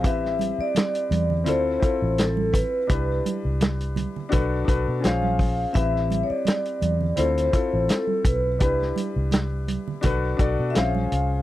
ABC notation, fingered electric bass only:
X:1
M:4/4
L:1/16
Q:"Swing 16ths" 1/4=84
K:Am
V:1 name="Fingered electric bass" clef=bass
A,,,3 z3 E,,2 D,,2 z A,,,4 z | C,,2 z C,,4 z B,,,2 B,,, B,, _B,,,4 | A,,,3 z3 E,,2 D,,2 z A,,, z2 B,,,2 | C,,2 z C,,4 z B,,,2 B,,, B,, _B,,,2 C,,2 |]